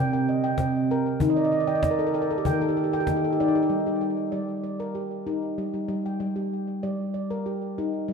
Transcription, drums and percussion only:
0.58 cajon bass, cajon slap
1.05 cajon slap
1.20 cajon bass
1.52 cajon slap
1.83 cajon bass, cajon slap
2.14 cajon slap
2.31 cajon slap
2.45 cajon bass
3.07 cajon bass, cajon slap
3.38 cajon slap
3.55 cajon slap

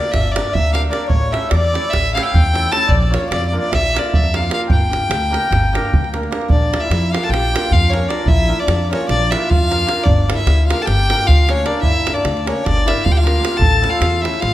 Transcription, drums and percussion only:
0.05 davul high
0.14 davul high, davul low
0.36 davul high
0.55 davul low
0.65 davul high
0.75 davul high
0.85 davul high
0.93 davul high
1.10 davul low
1.22 davul high
1.34 davul high
1.51 davul high
1.65 davul high
1.75 davul high
1.93 davul high, davul low
2.17 davul high
2.35 davul low
2.46 davul high
2.55 davul high
2.65 davul high
2.72 davul high
2.89 davul low
3.02 davul high
3.14 davul high
3.32 davul high
3.44 davul high
3.64 davul high
3.73 davul high, davul low
3.97 davul high
4.14 davul low
4.24 davul high
4.34 davul high
4.43 davul high
4.51 davul high
4.70 davul low
4.81 davul high
4.93 davul high
5.02 davul high
5.11 davul high
5.34 davul high
5.43 davul high
5.53 davul high, davul low
5.64 davul high
5.75 davul high
5.93 davul low
6.04 davul high
6.14 davul high
6.23 davul high
6.32 davul high
6.41 davul high
6.50 davul low
6.62 davul high
6.74 davul high
6.91 davul high
7.15 davul high
7.24 davul high
7.34 davul high
7.45 davul high
7.56 davul high
7.65 davul high
7.73 davul low
7.94 davul high
8.10 davul high
8.28 davul low
8.40 davul high
8.68 davul high
8.93 davul high
9.01 davul high
9.09 davul high
9.22 davul high
9.32 davul high
9.42 davul high
9.51 davul low
9.72 davul high
9.89 davul high
10.06 davul low
10.18 davul high
10.30 davul high
10.47 davul high
10.70 davul high
10.79 davul high
10.87 davul high
11.00 davul high
11.10 davul high
11.19 davul high
11.28 davul low
11.49 davul high
11.66 davul high
11.83 davul low
11.95 davul high
12.07 davul high
12.16 davul high
12.25 davul high
12.37 davul high
12.47 davul high
12.57 davul high
12.66 davul high, davul low
12.77 davul high
12.88 davul high
12.97 davul high
13.06 davul low
13.17 davul high
13.27 davul high
13.36 davul high
13.45 davul high
13.54 davul high
13.62 davul low
13.84 davul high
14.02 davul high
14.25 davul high
14.34 davul high
14.42 davul high

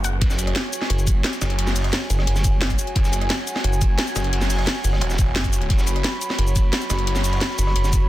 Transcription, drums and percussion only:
0.04 closed hi-hat, shaker
0.21 kick, closed hi-hat, ride
0.30 snare, shaker
0.38 closed hi-hat, ride, shaker
0.47 cross-stick, closed hi-hat
0.55 snare, closed hi-hat, ride
0.73 closed hi-hat, ride, shaker
0.82 cross-stick, snare
0.90 closed hi-hat, ride
0.99 shaker
1.07 kick, closed hi-hat, ride, shaker
1.24 snare, closed hi-hat, ride
1.33 closed hi-hat, shaker
1.41 cross-stick, snare, closed hi-hat, ride, shaker
1.50 closed hi-hat
1.59 closed hi-hat, ride
1.67 snare, ride, shaker
1.76 closed hi-hat, open hi-hat, shaker
1.84 cross-stick, closed hi-hat
1.93 snare, closed hi-hat, ride
2.02 snare
2.10 closed hi-hat, ride, shaker
2.19 cross-stick, snare
2.27 closed hi-hat, ride
2.36 snare, shaker
2.44 kick, closed hi-hat, ride, shaker
2.61 snare, closed hi-hat, ride
2.70 kick, cross-stick, closed hi-hat, shaker
2.79 closed hi-hat, ride, shaker
2.87 closed hi-hat
2.95 kick, closed hi-hat, ride
3.04 snare, shaker
3.13 closed hi-hat, ride, shaker
3.21 cross-stick, closed hi-hat
3.30 snare, closed hi-hat, ride
3.47 closed hi-hat, ride, shaker
3.56 cross-stick, snare
3.64 closed hi-hat, ride
3.73 shaker
3.81 kick, closed hi-hat, ride, shaker
3.98 snare, closed hi-hat, ride
4.07 closed hi-hat, shaker
4.16 cross-stick, snare, closed hi-hat, ride, shaker
4.24 closed hi-hat
4.33 closed hi-hat, ride
4.41 snare, ride, shaker
4.50 closed hi-hat, open hi-hat, shaker
4.59 cross-stick, closed hi-hat
4.67 snare, closed hi-hat, ride
4.75 snare
4.84 closed hi-hat, ride, shaker
4.93 cross-stick, snare
5.01 closed hi-hat, ride
5.10 snare, shaker
5.18 kick, closed hi-hat, ride, shaker
5.36 snare, closed hi-hat, ride
5.44 kick, cross-stick, closed hi-hat, shaker
5.53 closed hi-hat, ride, shaker
5.62 closed hi-hat
5.70 kick, closed hi-hat, ride
5.79 snare, shaker
5.87 closed hi-hat, ride, shaker
5.96 cross-stick, closed hi-hat
6.04 snare, closed hi-hat, ride
6.21 closed hi-hat, ride, shaker
6.30 cross-stick, snare
6.38 closed hi-hat, ride
6.47 shaker
6.56 kick, closed hi-hat, ride, shaker
6.72 snare, closed hi-hat, ride
6.81 closed hi-hat, shaker
6.89 cross-stick, snare, closed hi-hat, ride, shaker
6.99 closed hi-hat
7.07 closed hi-hat, ride
7.16 snare, ride, shaker
7.24 closed hi-hat, open hi-hat, shaker
7.33 cross-stick, closed hi-hat
7.41 snare, closed hi-hat, ride
7.50 snare
7.59 closed hi-hat, ride, shaker
7.67 cross-stick, snare
7.76 closed hi-hat, ride
7.84 snare, shaker
7.93 kick, closed hi-hat, ride, shaker

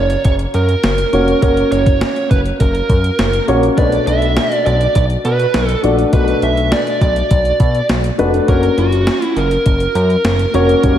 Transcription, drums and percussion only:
0.10 closed hi-hat
0.25 kick, closed hi-hat
0.39 closed hi-hat
0.54 closed hi-hat
0.69 closed hi-hat
0.83 snare, closed hi-hat
0.98 closed hi-hat
1.13 closed hi-hat
1.28 closed hi-hat
1.42 kick, closed hi-hat
1.57 closed hi-hat
1.72 closed hi-hat
1.86 kick, closed hi-hat
2.01 snare, closed hi-hat
2.16 closed hi-hat
2.31 kick, closed hi-hat
2.46 closed hi-hat
2.60 kick, closed hi-hat
2.75 closed hi-hat
2.89 kick, closed hi-hat
3.04 closed hi-hat
3.19 snare, closed hi-hat
3.33 closed hi-hat
3.48 closed hi-hat
3.63 closed hi-hat
3.78 kick, closed hi-hat
3.92 closed hi-hat
4.07 closed hi-hat
4.22 closed hi-hat
4.37 snare, closed hi-hat
4.52 closed hi-hat
4.66 closed hi-hat
4.81 closed hi-hat
4.95 kick, closed hi-hat
5.10 closed hi-hat
5.25 closed hi-hat
5.40 closed hi-hat
5.54 snare, closed hi-hat
5.69 closed hi-hat
5.84 closed hi-hat
5.99 closed hi-hat
6.13 kick, closed hi-hat
6.28 closed hi-hat
6.42 closed hi-hat
6.57 closed hi-hat
6.72 snare, closed hi-hat
6.87 closed hi-hat
7.01 kick, closed hi-hat
7.16 closed hi-hat
7.31 kick, closed hi-hat
7.45 closed hi-hat
7.60 kick, closed hi-hat
7.75 closed hi-hat
7.89 snare, closed hi-hat
8.04 closed hi-hat
8.19 closed hi-hat
8.34 closed hi-hat
8.48 kick, closed hi-hat
8.63 closed hi-hat
8.78 closed hi-hat
8.92 closed hi-hat
9.07 snare, closed hi-hat
9.22 closed hi-hat
9.37 closed hi-hat
9.51 closed hi-hat
9.66 kick, closed hi-hat
9.80 closed hi-hat
9.95 closed hi-hat
10.10 closed hi-hat
10.25 snare, closed hi-hat
10.39 closed hi-hat
10.54 closed hi-hat
10.69 closed hi-hat
10.84 kick, closed hi-hat

